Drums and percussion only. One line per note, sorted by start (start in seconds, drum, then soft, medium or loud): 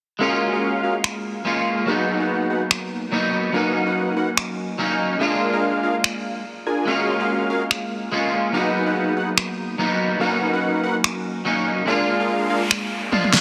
1.04 finger snap medium
2.71 finger snap medium
4.37 finger snap medium
6.04 finger snap medium
7.71 finger snap medium
9.38 finger snap medium
11.04 finger snap medium
12.71 finger snap medium
13.13 high tom medium
13.24 high tom medium
13.33 snare medium